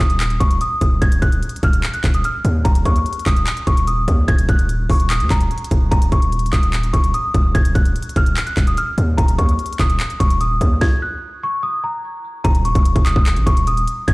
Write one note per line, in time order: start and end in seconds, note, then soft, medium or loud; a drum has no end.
0.00 0.39 D#1 loud
0.00 0.38 D#6 medium
0.10 closed hi-hat medium
0.20 clap loud
0.20 closed hi-hat medium
0.30 closed hi-hat medium
0.40 0.60 D#1 loud
0.40 0.59 C#6 medium
0.40 kick loud
0.40 closed hi-hat medium
0.51 closed hi-hat medium
0.61 1.00 D#6 medium
0.61 closed hi-hat medium
0.81 1.01 D#1 loud
0.81 kick medium
0.81 closed hi-hat medium
1.02 1.21 D#1 loud
1.02 1.20 G#6 loud
1.02 kick loud
1.02 closed hi-hat medium
1.12 closed hi-hat medium
1.22 1.42 D#1 loud
1.22 1.60 F#6 medium
1.22 kick medium
1.22 closed hi-hat medium
1.32 closed hi-hat medium
1.43 closed hi-hat medium
1.49 closed hi-hat medium
1.56 closed hi-hat medium
1.63 1.83 D#1 loud
1.63 1.92 F6 medium
1.63 kick medium
1.63 closed hi-hat medium
1.73 closed hi-hat medium
1.83 clap loud
1.83 closed hi-hat medium
1.94 2.12 F#6 medium
1.94 closed hi-hat medium
2.04 2.23 D#1 loud
2.04 kick medium
2.04 clap medium
2.04 closed hi-hat medium
2.14 2.24 D#6 medium
2.14 closed hi-hat medium
2.24 2.63 F6 medium
2.24 closed hi-hat medium
2.45 2.64 D#2 loud
2.45 closed hi-hat medium
2.65 2.85 D#1 loud
2.65 2.83 A#5 medium
2.65 kick loud
2.65 closed hi-hat medium
2.75 closed hi-hat medium
2.85 3.05 D#2 loud
2.85 3.24 C#6 medium
2.85 kick medium
2.85 closed hi-hat medium
2.96 closed hi-hat medium
3.06 closed hi-hat medium
3.13 closed hi-hat medium
3.19 closed hi-hat medium
3.26 3.46 D#1 loud
3.26 3.65 D#6 medium
3.26 kick medium
3.26 clap medium
3.26 closed hi-hat medium
3.37 closed hi-hat medium
3.47 clap loud
3.47 closed hi-hat medium
3.57 closed hi-hat medium
3.67 4.06 D#1 loud
3.67 3.85 C#6 medium
3.67 kick medium
3.67 closed hi-hat medium
3.77 closed hi-hat medium
3.87 4.26 D#6 medium
3.87 closed hi-hat medium
4.08 4.27 D#2 loud
4.08 kick medium
4.08 closed hi-hat medium
4.28 4.48 D#1 loud
4.28 4.47 G#6 loud
4.28 kick loud
4.28 closed hi-hat medium
4.38 closed hi-hat medium
4.49 4.88 D#1 loud
4.49 4.87 F#6 medium
4.49 kick medium
4.49 closed hi-hat medium
4.59 closed hi-hat medium
4.69 closed hi-hat medium
4.90 5.22 D#1 loud
4.90 5.09 C#6 medium
4.90 kick medium
4.90 open hi-hat medium
5.00 closed hi-hat medium
5.10 5.28 D#6 medium
5.10 clap loud
5.10 closed hi-hat medium
5.20 5.30 D#2 loud
5.20 closed hi-hat medium
5.30 5.50 D#1 loud
5.30 5.88 A#5 medium
5.30 kick medium
5.30 clap medium
5.30 closed hi-hat medium
5.41 closed hi-hat medium
5.51 closed hi-hat soft
5.58 closed hi-hat medium
5.64 closed hi-hat medium
5.71 5.91 D#1 loud
5.71 kick medium
5.71 closed hi-hat medium
5.91 6.11 D#1 loud
5.91 6.10 A#5 medium
5.91 kick loud
5.91 closed hi-hat medium
6.02 closed hi-hat medium
6.12 6.51 D#1 loud
6.12 6.50 C#6 medium
6.12 kick medium
6.12 closed hi-hat medium
6.22 closed hi-hat medium
6.32 closed hi-hat medium
6.39 closed hi-hat medium
6.46 closed hi-hat medium
6.52 6.92 D#1 loud
6.52 6.91 D#6 medium
6.52 kick medium
6.52 clap medium
6.52 closed hi-hat medium
6.63 closed hi-hat medium
6.73 clap loud
6.73 closed hi-hat medium
6.83 closed hi-hat medium
6.93 7.13 D#1 loud
6.93 7.12 C#6 medium
6.93 kick medium
6.93 closed hi-hat medium
7.04 closed hi-hat medium
7.14 7.53 D#6 medium
7.14 closed hi-hat medium
7.34 7.54 D#1 loud
7.34 kick medium
7.34 closed hi-hat medium
7.55 7.74 D#1 loud
7.55 7.73 G#6 loud
7.55 kick loud
7.55 closed hi-hat medium
7.65 closed hi-hat medium
7.75 7.95 D#1 loud
7.75 8.13 F#6 medium
7.75 kick medium
7.75 closed hi-hat medium
7.86 closed hi-hat medium
7.96 closed hi-hat medium
8.03 closed hi-hat medium
8.09 closed hi-hat medium
8.16 8.36 D#1 loud
8.16 8.45 F6 medium
8.16 kick medium
8.16 closed hi-hat medium
8.26 closed hi-hat medium
8.37 clap loud
8.37 closed hi-hat medium
8.47 8.65 F#6 medium
8.47 closed hi-hat medium
8.57 8.76 D#1 loud
8.57 kick medium
8.57 clap medium
8.57 closed hi-hat medium
8.67 8.77 D#6 medium
8.67 closed hi-hat medium
8.77 9.16 F6 medium
8.77 closed hi-hat medium
8.98 9.17 D#2 loud
8.98 closed hi-hat medium
9.18 9.38 D#1 loud
9.18 9.36 A#5 medium
9.18 kick loud
9.18 closed hi-hat medium
9.28 closed hi-hat medium
9.38 9.58 D#2 loud
9.38 9.77 C#6 medium
9.38 kick medium
9.38 closed hi-hat medium
9.49 closed hi-hat medium
9.59 closed hi-hat medium
9.66 closed hi-hat medium
9.73 closed hi-hat medium
9.79 9.99 D#1 loud
9.79 10.18 D#6 medium
9.79 kick medium
9.79 clap medium
9.79 closed hi-hat medium
9.90 closed hi-hat medium
10.00 clap loud
10.00 closed hi-hat medium
10.10 closed hi-hat medium
10.20 10.59 D#1 loud
10.20 10.38 C#6 medium
10.20 kick medium
10.20 closed hi-hat medium
10.30 closed hi-hat medium
10.41 10.79 D#6 medium
10.41 closed hi-hat medium
10.61 10.81 D#2 loud
10.61 kick medium
10.61 closed hi-hat medium
10.81 11.00 G#6 loud
10.81 kick loud
10.81 snare medium
11.02 11.40 F#6 medium
11.44 11.62 C#6 medium
11.63 11.81 D#6 medium
11.84 12.41 A#5 medium
12.44 12.74 D#1 loud
12.44 12.63 A#5 loud
12.44 kick loud
12.44 closed hi-hat medium
12.55 closed hi-hat medium
12.65 13.03 C#6 medium
12.65 closed hi-hat medium
12.75 12.95 D#1 loud
12.75 kick medium
12.75 closed hi-hat medium
12.85 closed hi-hat medium
12.96 13.15 D#1 loud
12.96 kick medium
12.96 closed hi-hat medium
13.05 13.44 D#6 medium
13.05 clap medium
13.05 closed hi-hat medium
13.16 13.38 D#1 loud
13.16 kick loud
13.26 clap loud
13.26 closed hi-hat medium
13.36 13.46 A#1 loud
13.36 closed hi-hat medium
13.46 13.86 D#1 loud
13.46 13.65 C#6 medium
13.46 kick medium
13.46 closed hi-hat medium
13.57 closed hi-hat medium
13.67 14.06 D#6 medium
13.67 closed hi-hat medium
13.77 closed hi-hat medium
13.88 closed hi-hat medium
14.08 14.14 D#1 loud
14.08 14.14 G#6 loud
14.08 kick loud
14.08 closed hi-hat medium